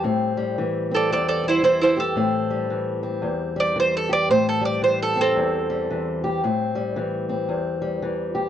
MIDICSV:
0, 0, Header, 1, 3, 480
1, 0, Start_track
1, 0, Key_signature, 0, "minor"
1, 0, Tempo, 532387
1, 39, Time_signature, 4, 2, 24, 8
1, 7656, End_track
2, 0, Start_track
2, 0, Title_t, "Mandolin"
2, 0, Program_c, 0, 25
2, 852, Note_on_c, 0, 69, 69
2, 869, Note_on_c, 0, 74, 83
2, 995, Note_off_c, 0, 69, 0
2, 1009, Note_off_c, 0, 74, 0
2, 1014, Note_on_c, 0, 69, 63
2, 1022, Note_on_c, 0, 74, 78
2, 1148, Note_off_c, 0, 69, 0
2, 1151, Note_off_c, 0, 74, 0
2, 1158, Note_on_c, 0, 69, 64
2, 1162, Note_on_c, 0, 74, 70
2, 1307, Note_off_c, 0, 69, 0
2, 1316, Note_off_c, 0, 74, 0
2, 1334, Note_on_c, 0, 64, 67
2, 1346, Note_on_c, 0, 72, 78
2, 1466, Note_off_c, 0, 64, 0
2, 1472, Note_off_c, 0, 72, 0
2, 1477, Note_on_c, 0, 64, 74
2, 1483, Note_on_c, 0, 72, 81
2, 1627, Note_off_c, 0, 64, 0
2, 1636, Note_off_c, 0, 72, 0
2, 1636, Note_on_c, 0, 64, 68
2, 1651, Note_on_c, 0, 72, 75
2, 1786, Note_off_c, 0, 64, 0
2, 1800, Note_off_c, 0, 72, 0
2, 1801, Note_on_c, 0, 69, 93
2, 2731, Note_off_c, 0, 69, 0
2, 3246, Note_on_c, 0, 74, 92
2, 3397, Note_off_c, 0, 74, 0
2, 3424, Note_on_c, 0, 72, 90
2, 3567, Note_off_c, 0, 72, 0
2, 3577, Note_on_c, 0, 69, 83
2, 3718, Note_off_c, 0, 69, 0
2, 3721, Note_on_c, 0, 74, 95
2, 3875, Note_off_c, 0, 74, 0
2, 3883, Note_on_c, 0, 72, 85
2, 4036, Note_off_c, 0, 72, 0
2, 4045, Note_on_c, 0, 69, 79
2, 4191, Note_off_c, 0, 69, 0
2, 4195, Note_on_c, 0, 74, 87
2, 4352, Note_off_c, 0, 74, 0
2, 4361, Note_on_c, 0, 72, 73
2, 4515, Note_off_c, 0, 72, 0
2, 4530, Note_on_c, 0, 69, 86
2, 4679, Note_off_c, 0, 69, 0
2, 4696, Note_on_c, 0, 60, 79
2, 4700, Note_on_c, 0, 69, 82
2, 5611, Note_off_c, 0, 60, 0
2, 5618, Note_off_c, 0, 69, 0
2, 7656, End_track
3, 0, Start_track
3, 0, Title_t, "Steel-string acoustic guitar"
3, 0, Program_c, 1, 25
3, 0, Note_on_c, 1, 55, 58
3, 32, Note_on_c, 1, 45, 69
3, 37, Note_on_c, 1, 60, 60
3, 324, Note_off_c, 1, 55, 0
3, 335, Note_on_c, 1, 55, 57
3, 524, Note_on_c, 1, 52, 65
3, 819, Note_off_c, 1, 60, 0
3, 822, Note_on_c, 1, 60, 52
3, 996, Note_off_c, 1, 45, 0
3, 998, Note_on_c, 1, 40, 60
3, 1288, Note_off_c, 1, 55, 0
3, 1292, Note_on_c, 1, 55, 58
3, 1467, Note_off_c, 1, 52, 0
3, 1471, Note_on_c, 1, 52, 59
3, 1776, Note_on_c, 1, 67, 62
3, 1945, Note_on_c, 1, 45, 73
3, 1950, Note_off_c, 1, 60, 0
3, 1953, Note_on_c, 1, 60, 63
3, 1959, Note_off_c, 1, 40, 0
3, 1972, Note_off_c, 1, 67, 0
3, 2254, Note_off_c, 1, 55, 0
3, 2258, Note_on_c, 1, 55, 57
3, 2431, Note_off_c, 1, 52, 0
3, 2435, Note_on_c, 1, 52, 61
3, 2727, Note_off_c, 1, 60, 0
3, 2731, Note_on_c, 1, 60, 59
3, 2903, Note_on_c, 1, 40, 61
3, 2912, Note_off_c, 1, 45, 0
3, 3207, Note_off_c, 1, 55, 0
3, 3210, Note_on_c, 1, 55, 61
3, 3385, Note_off_c, 1, 52, 0
3, 3389, Note_on_c, 1, 52, 64
3, 3691, Note_on_c, 1, 67, 64
3, 3870, Note_off_c, 1, 40, 0
3, 3871, Note_on_c, 1, 45, 73
3, 3873, Note_off_c, 1, 60, 0
3, 3877, Note_on_c, 1, 60, 63
3, 3899, Note_off_c, 1, 67, 0
3, 4156, Note_off_c, 1, 55, 0
3, 4159, Note_on_c, 1, 55, 58
3, 4341, Note_off_c, 1, 52, 0
3, 4344, Note_on_c, 1, 52, 67
3, 4648, Note_off_c, 1, 60, 0
3, 4652, Note_on_c, 1, 60, 60
3, 4832, Note_on_c, 1, 40, 72
3, 4834, Note_off_c, 1, 45, 0
3, 5125, Note_off_c, 1, 55, 0
3, 5137, Note_on_c, 1, 55, 57
3, 5311, Note_off_c, 1, 52, 0
3, 5323, Note_on_c, 1, 52, 63
3, 5624, Note_on_c, 1, 67, 69
3, 5777, Note_off_c, 1, 52, 0
3, 5782, Note_off_c, 1, 67, 0
3, 5794, Note_off_c, 1, 40, 0
3, 5802, Note_on_c, 1, 45, 78
3, 5804, Note_off_c, 1, 60, 0
3, 5808, Note_on_c, 1, 60, 63
3, 6078, Note_off_c, 1, 55, 0
3, 6089, Note_on_c, 1, 55, 58
3, 6277, Note_on_c, 1, 52, 67
3, 6571, Note_off_c, 1, 60, 0
3, 6575, Note_on_c, 1, 60, 57
3, 6750, Note_on_c, 1, 40, 67
3, 6759, Note_off_c, 1, 45, 0
3, 7036, Note_off_c, 1, 55, 0
3, 7047, Note_on_c, 1, 55, 60
3, 7223, Note_off_c, 1, 52, 0
3, 7234, Note_on_c, 1, 52, 63
3, 7526, Note_on_c, 1, 67, 64
3, 7656, Note_off_c, 1, 40, 0
3, 7656, Note_off_c, 1, 52, 0
3, 7656, Note_off_c, 1, 55, 0
3, 7656, Note_off_c, 1, 60, 0
3, 7656, Note_off_c, 1, 67, 0
3, 7656, End_track
0, 0, End_of_file